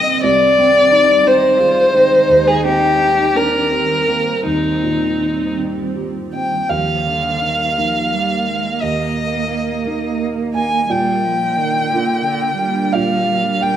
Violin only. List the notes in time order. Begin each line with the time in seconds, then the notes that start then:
Already playing: D#5
0.23 D5
1.27 C5
2.47 G#4
2.65 G4
3.37 A#4
4.46 D#4
6.34 G5
6.70 F5
8.82 D#5
10.55 G#5
10.91 G5
12.93 F5
13.63 G5